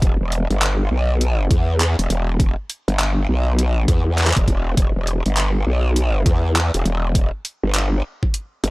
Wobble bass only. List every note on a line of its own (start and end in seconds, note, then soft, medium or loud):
0.02 0.18 E1 medium
0.21 0.48 E1 loud
0.50 0.89 G1 loud
0.91 1.49 B1 loud
1.51 1.96 E2 loud
1.99 2.08 E1 loud
2.10 2.55 E1 medium
2.88 3.27 G1 loud
3.29 3.87 B1 loud
3.88 4.34 E2 loud
4.36 4.46 E1 loud
4.48 4.76 E1 loud
4.77 4.93 E1 medium
4.96 5.23 E1 loud
5.26 5.65 G1 medium
5.67 6.24 B1 loud
6.26 6.71 E2 loud
6.74 6.84 E1 loud
6.85 7.31 E1 loud
7.63 8.02 G1 loud
8.64 8.70 G1 medium